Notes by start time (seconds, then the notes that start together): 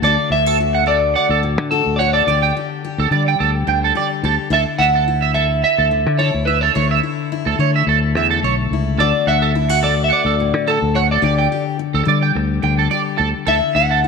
0.02 D2 D3 A3 D4 F#4 A4 D5
0.30 D2 E4 E5
0.46 F#4 A4
0.60 F#4
0.74 F#5
0.86 A3 A4 D5
1.15 D5 F#5
1.29 D2 A4
1.43 A2
1.58 D3
1.71 F#4 A4
1.86 D2
1.96 C#5 D5 F#5
2.00 F#4
2.13 A4 D5
2.27 D2 D3 G4 D5
2.42 G5
2.57 G4
2.85 G4
2.98 D2 A4
3.11 D3 G3 D5
3.28 G5
3.40 D2 A4
3.67 D2 D3 G5
3.84 A4
3.95 G4 D5
4.23 D2 G4 A4
4.50 D2 D3 E4 A4 E5
4.79 D2 E4 E5 F#5
4.95 A4
5.08 E4
5.22 E5
5.34 A4 E5, muted steel-string acoustic guitar stroke
5.64 E5
5.78 D2 A4
5.91 D3
6.06 D3
6.18 E4 A4 C#5
6.34 D2
6.45 E4 B4 E5
6.61 A4 C#5
6.75 D2 D3 E4 C#5
6.91 E5
7.03 E4
7.32 E4
7.46 D2 A4
7.59 D3 A3 C#5
7.76 E5
7.87 D2 A4
8.15 E2 D3 E5
8.30 A4
8.42 B1 C#5, muted steel-string acoustic guitar stroke
8.71 C#2 E4
8.98 D2 D3 F#4 A4 D5
9.27 D2 F#4 E5 F#5
9.42 A4
9.55 E4
9.69 F#4 F#5
9.83 A3 A4 D5
10.04 E5
10.10 D5 F#5
10.25 D2 A4
10.40 A2
10.54 D3
10.67 F#4 A4
10.82 D2
10.95 F#4 C#5 F#5
11.11 A4 D5
11.22 D2 D3 G4 D5
11.39 G5
11.52 G4
11.79 muted steel-string acoustic guitar stroke
11.94 D2 A4
12.05 D3 G3 D5
12.23 G5
12.35 D2, muted clean electric guitar stroke
12.63 D2 D3 G5
12.79 A4
12.91 G4 D5
13.18 D2 A4
13.47 D2 D3 E4 A4 E5
13.75 D2 E4 E5 F#5
13.91 A4
14.04 E4